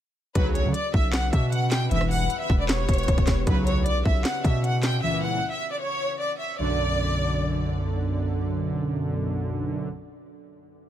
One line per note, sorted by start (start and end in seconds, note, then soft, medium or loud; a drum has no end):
0.35 0.66 B1 loud
0.35 0.72 D2 loud
0.35 0.72 C#3 loud
0.35 1.90 C#3 medium
0.35 0.72 F#3 loud
0.35 1.90 C#4 medium
0.35 1.90 F#4 medium
0.35 0.51 B4 loud
0.35 4.99 B4 medium
0.35 kick loud
0.35 closed hi-hat medium
0.55 0.70 C#5 medium
0.55 closed hi-hat medium
0.65 0.74 D3 loud
0.74 0.90 D5 medium
0.74 closed hi-hat medium
0.94 1.31 B1 loud
0.94 1.09 E5 medium
0.94 kick loud
1.13 1.29 F#5 medium
1.13 snare loud
1.13 clap loud
1.13 closed hi-hat medium
1.33 1.89 B2 loud
1.33 1.48 E5 medium
1.33 kick medium
1.33 closed hi-hat medium
1.52 1.67 F#5 medium
1.52 closed hi-hat medium
1.71 1.87 G5 medium
1.71 snare loud
1.71 clap medium
1.71 closed hi-hat medium
1.91 2.29 E1 loud
1.91 2.28 B1 loud
1.91 2.28 G2 medium
1.91 3.46 E3 medium
1.91 2.28 E3 loud
1.91 3.46 B3 medium
1.91 3.46 G4 medium
1.91 2.06 E5 loud
1.91 closed hi-hat medium
2.01 cross-stick loud
2.11 2.38 F#5 loud
2.11 open hi-hat medium
2.30 closed hi-hat medium
2.40 2.55 E5 medium
2.50 2.87 E1 loud
2.50 kick loud
2.60 2.67 D5 medium
2.69 3.43 C#5 medium
2.69 snare loud
2.69 clap medium
2.69 closed hi-hat medium
2.89 3.07 E1 loud
2.89 kick medium
2.89 closed hi-hat medium
2.93 closed hi-hat medium
2.98 closed hi-hat medium
3.03 closed hi-hat soft
3.08 3.17 E1 loud
3.08 kick loud
3.08 closed hi-hat medium
3.18 3.27 E1 loud
3.18 kick medium
3.18 closed hi-hat soft
3.27 3.46 E1 loud
3.27 kick loud
3.27 snare loud
3.27 clap medium
3.27 closed hi-hat medium
3.47 4.03 B1 loud
3.47 3.84 D2 loud
3.47 3.84 C#3 loud
3.47 5.01 C#3 medium
3.47 3.84 F#3 loud
3.47 5.01 C#4 medium
3.47 5.01 F#4 medium
3.47 3.63 B4 medium
3.47 kick loud
3.47 closed hi-hat medium
3.66 3.82 C#5 medium
3.66 closed hi-hat medium
3.86 4.01 D5 medium
3.86 closed hi-hat medium
4.05 4.24 B1 loud
4.05 4.21 E5 medium
4.05 kick loud
4.25 4.40 F#5 medium
4.25 snare loud
4.25 clap loud
4.25 closed hi-hat medium
4.44 5.01 B2 loud
4.44 4.60 E5 medium
4.44 kick medium
4.44 closed hi-hat medium
4.64 4.79 F#5 medium
4.64 closed hi-hat medium
4.83 4.99 G5 medium
4.83 snare loud
4.83 clap medium
4.83 closed hi-hat medium
5.02 5.40 C#2 loud
5.02 5.40 A#2 medium
5.02 5.40 E3 loud
5.02 5.18 E5 loud
5.23 5.50 F#5 medium
5.51 5.67 E5 medium
5.72 5.79 D5 medium
5.81 6.17 C#5 loud
6.20 6.35 D5 medium
6.39 6.54 E5 medium
6.59 9.89 B1 medium
6.59 9.89 F#2 medium
6.59 9.89 D3 loud
6.59 7.72 D5 loud